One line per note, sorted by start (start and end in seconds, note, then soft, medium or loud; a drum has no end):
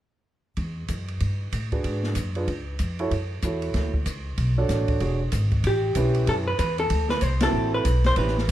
0.57 0.88 E2 medium
0.57 kick soft
0.57 ride soft
0.88 1.20 F#2 medium
0.88 kick soft
0.88 hi-hat pedal soft
0.88 ride soft
1.08 ride soft
1.20 1.52 G2 medium
1.20 kick soft
1.20 ride soft
1.52 1.83 A2 medium
1.52 kick soft
1.52 hi-hat pedal soft
1.52 ride soft
1.72 2.13 D4 soft
1.72 2.13 F#4 soft
1.72 2.14 G#4 soft
1.72 2.14 B4 soft
1.72 kick soft
1.72 ride soft
1.84 2.15 G#2 medium
1.84 kick soft
1.84 ride soft
2.03 snare soft
2.15 2.47 F#2 medium
2.15 kick soft
2.15 hi-hat pedal soft
2.15 ride soft
2.35 2.47 D4 soft
2.35 2.47 F4 soft
2.35 2.47 G#4 soft
2.35 2.47 B4 soft
2.35 ride soft
2.47 2.78 C#2 medium
2.47 kick soft
2.47 ride soft
2.79 3.10 F2 medium
2.79 kick soft
2.79 hi-hat pedal soft
2.79 ride soft
2.99 3.10 E4 medium
2.99 3.10 F#4 soft
2.99 3.10 A4 soft
2.99 3.10 C#5 medium
2.99 ride soft
3.11 3.42 F#2 medium
3.11 kick soft
3.11 ride soft
3.42 3.73 E2 medium
3.42 3.90 E4 soft
3.42 3.91 F#4 soft
3.42 3.91 A4 soft
3.42 3.91 C#5 soft
3.42 kick soft
3.42 hi-hat pedal medium
3.42 ride soft
3.62 ride soft
3.74 4.05 D2 medium
3.74 kick soft
3.74 snare soft
3.74 ride soft
3.94 kick soft
4.06 4.37 C#2 medium
4.06 kick soft
4.06 hi-hat pedal soft
4.06 ride soft
4.38 4.68 B1 medium
4.38 kick soft
4.38 ride soft
4.58 4.99 D4 medium
4.58 4.99 F#4 medium
4.58 4.99 A4 medium
4.58 4.99 C#5 medium
4.69 5.00 A1 medium
4.69 kick soft
4.69 snare soft
4.69 hi-hat pedal soft
4.69 ride soft
4.88 kick soft
4.88 ride soft
5.00 5.31 E1 medium
5.00 5.18 D4 soft
5.00 5.18 F#4 soft
5.00 5.19 G#4 soft
5.00 5.19 C#5 soft
5.00 kick soft
5.00 ride soft
5.32 5.63 G#1 medium
5.32 kick soft
5.32 hi-hat pedal soft
5.32 ride soft
5.52 kick soft
5.52 ride soft
5.64 5.94 A1 medium
5.64 6.25 G4 medium
5.64 kick soft
5.64 ride medium
5.95 6.26 B1 medium
5.95 6.43 C#4 soft
5.95 6.43 E4 soft
5.95 6.43 G4 soft
5.95 6.43 B4 medium
5.95 kick soft
5.95 hi-hat pedal soft
5.95 ride medium
6.15 ride soft
6.27 6.58 F#2 medium
6.27 6.34 A4 medium
6.27 kick soft
6.27 ride medium
6.48 6.58 B4 medium
6.59 6.89 E2 medium
6.59 6.79 B4 medium
6.59 kick soft
6.59 hi-hat pedal medium
6.59 ride medium
6.78 7.10 A4 medium
6.78 ride soft
6.90 7.21 D2 medium
6.90 kick soft
6.90 ride medium
7.09 7.22 B4 medium
7.09 snare soft
7.21 7.52 C2 medium
7.21 7.42 C5 medium
7.21 kick soft
7.21 hi-hat pedal soft
7.21 ride medium
7.40 7.83 C4 medium
7.40 7.83 E4 medium
7.40 7.83 F#4 medium
7.40 7.83 A4 medium
7.40 7.74 A4 medium
7.40 snare medium
7.40 ride medium
7.53 7.84 A1 medium
7.74 8.06 B4 medium
7.85 8.15 B1 medium
7.85 kick soft
7.85 hi-hat pedal medium
7.85 ride medium
8.04 8.17 C5 medium
8.04 snare soft
8.04 ride soft
8.16 8.47 A1 medium
8.16 8.34 C#4 soft
8.16 8.35 E4 soft
8.16 8.35 G4 soft
8.16 8.51 B4 medium
8.16 8.35 B4 medium
8.16 kick soft
8.16 ride medium
8.28 snare soft
8.38 snare soft
8.48 8.51 G1 medium